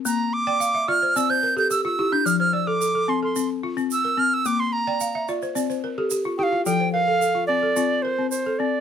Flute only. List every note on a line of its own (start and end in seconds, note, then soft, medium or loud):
0.06 0.35 A#5 medium
0.33 0.90 D6 loud
0.88 1.18 F6 loud
1.17 1.32 E6 loud
1.30 1.57 G6 loud
1.58 1.70 G6 medium
1.71 1.84 E6 loud
1.85 2.14 E6 medium
2.13 2.27 G6 loud
2.25 2.39 F6 loud
2.39 2.55 F6 medium
2.53 2.69 E6 medium
2.67 3.11 D6 medium
3.09 3.23 C6 medium
3.24 3.49 C6 medium
3.93 4.21 E6 loud
4.19 4.35 F6 loud
4.34 4.48 E6 medium
4.46 4.61 D6 loud
4.60 4.74 C6 medium
4.73 5.28 A#5 medium
6.38 6.44 G5 medium
6.43 6.64 F5 medium
6.65 6.91 G5 loud
6.93 7.44 F5 loud
7.47 8.04 D5 medium
8.02 8.29 C5 medium
8.30 8.60 C5 medium
8.59 8.80 D5 medium